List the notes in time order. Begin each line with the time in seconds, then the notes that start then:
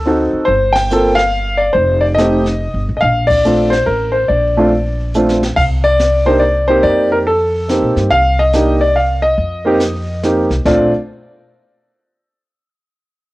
Already playing: D2
0.06 C4 D#4 F#4 A4
0.33 muted upright bass stroke
0.45 G1 C5, brush sweep
0.72 G5, snare, ride
0.90 A#3 C4 F4 A4, hi-hat pedal
1.15 F5, snare
1.57 D5
1.73 F1 C5, brush sweep
2.01 D5
2.15 A3 D#5, snare, hi-hat pedal
2.19 C4 D#4 G4
2.46 snare
2.74 G1
2.89 A1
2.97 D#5 F5
3.02 A#1, brush sweep
3.27 D5, kick, ride
3.45 A3 C4 D4 F4, hi-hat pedal
3.70 C5, snare
3.86 A1 A#4
4.12 C5
4.28 A#1 D5, brush sweep
4.57 A3 C4 D4 F4
5.14 A3 C4 D4 F4, hi-hat pedal
5.29 snare
5.43 snare
5.56 C2 F5, brush sweep, kick, crash
5.84 D5
5.99 snare, hi-hat pedal
6.26 A#3 D4 D#4 G4 C5
6.39 D5
6.68 A#3 C4 D#4 G4 C5
6.83 F2 D5, brush sweep
7.12 A#4
7.27 A4
7.69 A#3 C4 D#4 G4, snare, hi-hat pedal
7.82 A#2
7.96 G2, snare
8.10 C2 F5, brush sweep
8.39 D#5
8.53 A#3 D4 D#4 G4, snare, hi-hat pedal
8.81 D5
8.96 F5
9.22 D#5
9.38 F2, brush sweep
9.65 A#3 C4 D#4 G4
9.80 snare, hi-hat pedal
10.23 A#3 C4 D#4 G4, snare, hi-hat pedal
10.50 C2, snare
10.65 A#1 A3 C4 D4 F4 D5, kick, snare